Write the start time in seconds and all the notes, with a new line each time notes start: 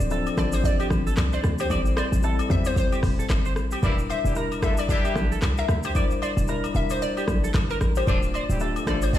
Already playing: F3 C4 D4 A4
0.00 D1, shaker
0.10 F3 C4 D4 A4, low woodblock, shaker
0.27 high agogo, shaker
0.36 A1 F3 C4 D4 A4 D5, kick, cross-stick, shaker
0.52 C5, high agogo, shaker
0.64 D5, kick, shaker
0.80 G4, high agogo, shaker
0.90 A1, kick, cross-stick, shaker
1.07 A4, shaker
1.17 C2, cross-stick, clap, high agogo, shaker
1.33 C5 D5, shaker
1.44 D2, cross-stick, shaker
1.58 G4 C5, high agogo, shaker
1.69 A1 G3 C4 E4 A4 D5, kick, high agogo, shaker
1.86 shaker
1.97 C5 D5, cross-stick, high agogo, shaker
2.12 A1, shaker
2.22 G3 C4 E4 A4, low woodblock, shaker
2.39 high agogo, shaker
2.49 E2 G3 C4 E4 C5 E5, kick, shaker
2.65 C5, high agogo, shaker
2.76 C5, kick, shaker
2.92 G4, high agogo, shaker
3.03 E1, kick, cross-stick, open hi-hat, shaker
3.19 A4, shaker
3.29 G1, kick, cross-stick, clap, high agogo, low woodblock, shaker
3.45 C5, shaker
3.56 A1, cross-stick, shaker
3.71 G4, high agogo, shaker
3.82 E1 E3 F#3 G3 A#3 D4 E4 A#4 D5, kick, high agogo, shaker
3.88 G3
3.98 shaker
4.10 C5 E5, high agogo, shaker
4.25 E1 G3 D4 E4 G4, shaker
4.35 G3 D4 E4 A#4, low woodblock, shaker
4.52 high agogo, shaker
4.61 A1 G3 A3 D4 E4 F4 A4 A#4 E5, kick, cross-stick, shaker
4.77 D5, high agogo, shaker
4.89 G3 D4 E4 G4 E5, kick, shaker
5.05 G4, high agogo, shaker
5.15 A#1, kick, cross-stick, shaker
5.32 A4, shaker
5.42 C2, cross-stick, clap, high agogo, shaker
5.58 A#4 E5, shaker
5.69 D2, cross-stick, shaker
5.83 G4 C5, high agogo, shaker
5.94 G3 D4 E4 A#4 D5, kick, high agogo, shaker
6.11 shaker
6.22 C5 D5, high agogo, shaker
6.37 E1, shaker
6.47 G3 D4 E4 A#4, low woodblock, shaker
6.64 high agogo, shaker
6.74 E1 G3 D4 E4 A#4 E5, shaker
6.90 C5, high agogo, shaker
7.02 D5, shaker
7.17 G4, high agogo, shaker
7.28 A#1, kick, cross-stick, shaker
7.44 A4, shaker
7.54 G1, kick, cross-stick, clap, high agogo, shaker
7.70 A#4, shaker
7.81 A1, cross-stick, shaker
7.95 G4 C5, high agogo, shaker
8.06 D1 F3 A3 C4 D4 F4 C5 D5, kick, high agogo, shaker
8.23 shaker
8.34 C5 D5, high agogo, shaker
8.49 D1 G3 C4 E4 G4, shaker
8.59 A3 D4 F4 G4 A4, low woodblock, shaker
8.76 high agogo, shaker
8.86 A1 A3 D4 F4 A4 C5 D5, kick, cross-stick, shaker
9.02 C5, high agogo, shaker
9.13 F3 C4 D4 F4 D5, kick, shaker